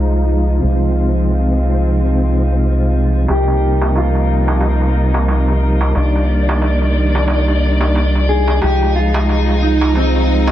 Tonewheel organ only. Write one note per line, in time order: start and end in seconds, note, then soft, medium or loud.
0.00 0.58 G#3 medium
0.00 0.60 D#4 medium
0.00 0.62 F4 medium
0.60 3.25 C3 medium
0.60 3.26 G#3 medium
0.65 3.27 D#4 medium
0.65 3.28 F4 medium
3.27 5.91 C3 medium
3.27 5.92 G3 medium
3.32 5.94 D#4 medium
3.32 5.95 A#4 medium
5.93 8.58 G3 medium
5.97 8.60 D4 medium
5.97 8.62 D#4 medium
8.59 10.52 G#3 medium
8.63 10.52 D#4 medium
8.63 10.52 F4 medium